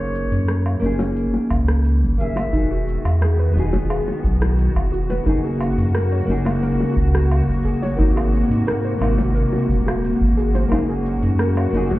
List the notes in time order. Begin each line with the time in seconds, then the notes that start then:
Already playing: F#1 A#3 C#4 D#4 G#4 C#5
0.15 cabasa
0.32 F#2, open hi-hat, cabasa
0.48 cross-stick, open hi-hat, cabasa
0.66 cabasa, low woodblock
0.79 F#1 A#3 C#4 D#4
0.84 G#4, cabasa
0.99 open hi-hat, high bongo, cabasa
1.16 open hi-hat, cabasa
1.34 high bongo, cabasa
1.50 C#2, kick, cabasa, low woodblock
1.68 cross-stick, open hi-hat, cabasa
1.85 open hi-hat, cabasa
2.02 F#1, cabasa
2.18 D#3 A#3 C#4 G#4 E5, kick, cabasa
2.36 open hi-hat, high bongo, cabasa, low woodblock
2.51 E1 D#3 G#3 B3 D#4 F#4, kick, open hi-hat, cabasa
2.57 G#4
2.71 F#4, cabasa
2.88 cabasa
3.05 E2, open hi-hat, cabasa, low woodblock
3.22 G#4, cross-stick, open hi-hat, cabasa
3.39 B4, cabasa
3.53 E1 B3 D#4 F#4, cabasa
3.59 G#4
3.73 kick, open hi-hat, high bongo, cabasa
3.90 G#4, open hi-hat, cabasa, low woodblock
4.08 high bongo, cabasa
4.24 B1, kick, cabasa
4.41 E4, cross-stick, open hi-hat, cabasa
4.58 open hi-hat, cabasa
4.76 E1, kick, cabasa, low woodblock
4.92 F#4, cabasa
5.10 B4, open hi-hat, high bongo, cabasa
5.23 F#1 A#3 C#4 D#4, kick, open hi-hat
5.27 C#3 G#4, cabasa
5.44 G#4, cabasa
5.61 cabasa, low woodblock
5.78 F#2, open hi-hat, cabasa
5.95 A#4, cross-stick, open hi-hat, cabasa
6.12 C#5, cabasa
6.25 F#1 A#3 C#4
6.29 D#4 G#4, cabasa
6.45 open hi-hat, high bongo, cabasa, low woodblock
6.63 A#4, open hi-hat, cabasa
6.80 high bongo, cabasa
6.97 C#2, kick, cabasa
7.14 F#4, cross-stick, open hi-hat, cabasa
7.32 open hi-hat, cabasa, low woodblock
7.48 F#1, cabasa
7.65 G#4, kick, cabasa
7.82 C#5, open hi-hat, high bongo, cabasa
7.96 G#1 C3 A#3 C4 D#4, kick
8.00 D#4 F#4, open hi-hat, cabasa
8.16 G#4, cabasa, low woodblock
8.34 cabasa
8.50 G#2, open hi-hat, cabasa
8.67 A#4, cross-stick, open hi-hat, cabasa
8.85 C5, cabasa
8.97 G#1 A#3 C4
9.01 D#4 F#4, cabasa, low woodblock
9.18 kick, open hi-hat, high bongo, cabasa
9.35 A#4, open hi-hat, cabasa
9.53 high bongo, cabasa
9.69 D#1, kick, cabasa
9.86 F#4, cross-stick, open hi-hat, cabasa, low woodblock
10.04 open hi-hat, cabasa
10.21 G#1, kick, cabasa
10.37 G#4, cabasa
10.55 C5, open hi-hat, high bongo, cabasa
10.68 F#1 C#3 A#3 C#4 D#4 F#4, kick, open hi-hat, low woodblock
10.73 G#4, cabasa
10.89 G#4, cabasa
11.06 cabasa
11.23 F#2, open hi-hat, cabasa
11.39 A#4, cross-stick, open hi-hat, cabasa
11.57 C#5, cabasa, low woodblock
11.70 F#1 A#3 C#4
11.74 D#4 G#4, cabasa
11.91 kick, open hi-hat, high bongo, cabasa